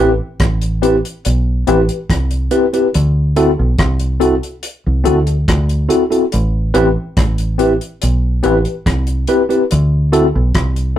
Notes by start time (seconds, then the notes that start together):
Already playing: C4 E4 G4 B4
0.00 A1
0.40 A1, kick, cross-stick, closed hi-hat
0.62 closed hi-hat
0.82 C4 E4 G4 B4, closed hi-hat
1.05 closed hi-hat
1.25 B1, closed hi-hat
1.67 A1 C4 E4 G4 B4, closed hi-hat
1.88 G4 B4, closed hi-hat
2.10 C2, kick, cross-stick, closed hi-hat
2.31 closed hi-hat
2.51 C4 E4 G4 B4, closed hi-hat
2.73 C4 E4 G4 B4, closed hi-hat
2.94 D2, closed hi-hat
3.36 C4 E4 F#4 A4, closed hi-hat
3.59 B1
3.79 C2, kick, cross-stick, closed hi-hat
3.99 closed hi-hat
4.20 C4 E4 F#4 A4, closed hi-hat
4.43 closed hi-hat
4.63 closed hi-hat
4.86 C2
5.04 D2 C4 E4 F#4 A4, closed hi-hat
5.26 F#4 A4, closed hi-hat
5.48 D2, kick, cross-stick, closed hi-hat
5.69 closed hi-hat
5.89 C4 E4 F#4 A4, closed hi-hat
6.10 C4 E4 F#4 A4, closed hi-hat
6.32 A1, closed hi-hat
6.74 A1 C4 E4 G4 B4, closed hi-hat
7.17 A1, kick, cross-stick, closed hi-hat
7.38 closed hi-hat
7.58 C4 E4 G4 B4, closed hi-hat
7.81 closed hi-hat
8.02 B1, closed hi-hat
8.43 A1 C4 E4 G4 B4, closed hi-hat
8.64 G4 B4, closed hi-hat
8.86 C2, kick, cross-stick, closed hi-hat
9.07 closed hi-hat
9.27 C4 E4 G4 B4, closed hi-hat
9.49 C4 E4 G4 B4, closed hi-hat
9.71 D2, closed hi-hat
10.12 C4 E4 F#4 A4, closed hi-hat
10.35 B1
10.55 C2, kick, cross-stick, closed hi-hat
10.76 closed hi-hat